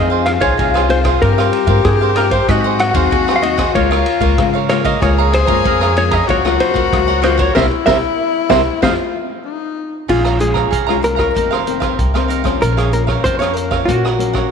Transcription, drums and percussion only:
0.26 cross-stick medium
0.26 ride soft
0.41 kick medium
0.41 ride soft
0.59 kick medium
0.59 ride soft
0.75 cross-stick medium
0.90 ride soft
1.05 kick medium
1.05 cross-stick medium
1.05 ride soft
1.22 kick medium
1.22 ride soft
1.38 cross-stick medium
1.53 ride soft
1.67 kick medium
1.67 ride soft
1.85 kick medium
1.85 cross-stick medium
1.85 ride soft
2.16 cross-stick medium
2.16 ride soft
2.31 kick medium
2.31 ride soft
2.48 kick medium
2.48 cross-stick medium
2.48 ride soft
2.79 cross-stick medium
2.79 ride medium
2.95 kick medium
2.95 ride medium
3.12 kick medium
3.12 ride soft
3.29 cross-stick medium
3.43 ride soft
3.58 kick medium
3.58 cross-stick medium
3.58 ride medium
3.75 kick medium
3.75 ride medium
3.92 cross-stick medium
4.06 ride soft
4.21 kick medium
4.21 ride medium
4.38 kick medium
4.38 cross-stick medium
4.38 ride medium
4.69 cross-stick medium
4.69 ride medium
4.85 kick medium
4.85 ride medium
5.02 kick medium
5.02 cross-stick medium
5.02 ride soft
5.33 cross-stick medium
5.33 ride medium
5.48 kick medium
5.48 ride soft
5.65 kick medium
5.65 ride soft
5.81 cross-stick medium
5.97 ride soft
6.11 kick medium
6.11 cross-stick medium
6.11 ride soft
6.29 kick medium
6.29 ride soft
6.45 cross-stick medium
6.60 ride soft
6.75 kick medium
6.75 ride soft
6.93 kick medium
6.93 cross-stick medium
6.93 ride soft
7.23 cross-stick medium
7.23 ride soft
7.39 kick medium
7.39 ride soft
7.56 kick medium
7.56 snare medium
7.87 kick medium
7.87 snare medium
8.50 kick medium
8.50 snare medium
8.83 kick medium
8.83 snare medium
10.09 kick medium
10.09 crash medium
10.25 cross-stick medium
10.25 closed hi-hat soft
10.40 closed hi-hat soft
10.55 kick medium
10.55 cross-stick medium
10.72 kick medium
10.72 closed hi-hat medium
10.89 cross-stick medium
11.04 closed hi-hat soft
11.19 kick medium
11.19 cross-stick medium
11.36 kick medium
11.36 closed hi-hat medium
11.52 cross-stick medium
11.67 closed hi-hat soft
11.82 kick medium
11.82 cross-stick medium
11.82 closed hi-hat soft
11.99 kick medium
11.99 closed hi-hat medium
12.15 cross-stick medium
12.15 closed hi-hat soft
12.30 closed hi-hat soft
12.45 kick medium
12.45 cross-stick medium
12.45 closed hi-hat soft
12.62 kick medium
12.62 closed hi-hat medium
12.78 cross-stick medium
12.78 closed hi-hat soft
12.93 closed hi-hat soft
13.08 kick medium
13.08 cross-stick medium
13.25 kick medium
13.25 closed hi-hat medium
13.42 cross-stick medium
13.42 closed hi-hat soft
13.57 closed hi-hat soft
13.71 kick medium
13.71 cross-stick medium
13.89 kick medium
13.89 closed hi-hat medium
14.05 cross-stick medium
14.20 closed hi-hat soft
14.35 kick medium
14.35 cross-stick medium

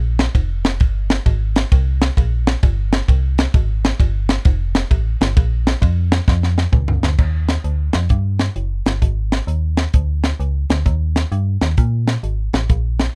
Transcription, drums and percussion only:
0.19 snare loud
0.19 ride medium
0.35 kick medium
0.35 ride medium
0.65 snare loud
0.65 ride medium
0.80 kick loud
0.80 ride medium
1.10 snare loud
1.10 ride soft
1.26 kick medium
1.26 ride medium
1.56 snare loud
1.56 ride medium
1.72 kick loud
1.72 ride medium
2.02 snare loud
2.02 ride medium
2.17 kick medium
2.17 ride medium
2.47 snare loud
2.47 ride medium
2.63 kick loud
2.63 ride medium
2.93 snare loud
2.93 ride medium
3.08 kick medium
3.08 ride medium
3.38 snare loud
3.38 ride medium
3.54 kick loud
3.54 ride medium
3.85 snare loud
3.85 ride medium
4.00 kick loud
4.00 ride medium
4.29 snare loud
4.29 ride medium
4.45 kick loud
4.45 ride medium
4.75 snare loud
4.75 ride medium
4.91 kick medium
4.91 ride medium
5.21 snare loud
5.21 ride medium
5.37 kick loud
5.37 ride medium
5.67 snare loud
5.67 ride medium
5.82 kick medium
5.82 ride medium
6.12 snare loud
6.12 ride medium
6.28 kick loud
6.28 snare medium
6.43 snare medium
6.58 snare medium
6.73 kick medium
6.73 mid tom medium
6.88 floor tom loud
7.03 snare medium
7.18 kick loud
7.18 crash medium
7.49 snare loud
7.49 closed hi-hat medium
7.64 closed hi-hat medium
7.93 snare medium
7.93 closed hi-hat medium
8.09 kick loud
8.09 closed hi-hat medium
8.39 snare medium
8.39 closed hi-hat medium
8.56 closed hi-hat medium
8.86 snare loud
8.86 closed hi-hat medium
9.02 kick medium
9.02 closed hi-hat medium
9.32 snare medium
9.32 closed hi-hat medium
9.48 closed hi-hat medium
9.77 snare medium
9.77 closed hi-hat medium
9.93 kick loud
9.93 closed hi-hat medium
10.24 snare medium
10.24 closed hi-hat medium
10.40 closed hi-hat medium
10.70 snare loud
10.70 closed hi-hat medium
10.86 kick medium
10.86 closed hi-hat medium
11.16 snare medium
11.16 closed hi-hat medium
11.32 closed hi-hat medium
11.61 snare medium
11.61 closed hi-hat medium
11.77 kick loud
11.77 closed hi-hat medium
12.07 snare medium
12.07 closed hi-hat medium
12.24 closed hi-hat medium
12.53 snare medium
12.53 closed hi-hat medium
12.69 kick loud
12.69 closed hi-hat medium
12.99 snare medium
12.99 closed hi-hat medium

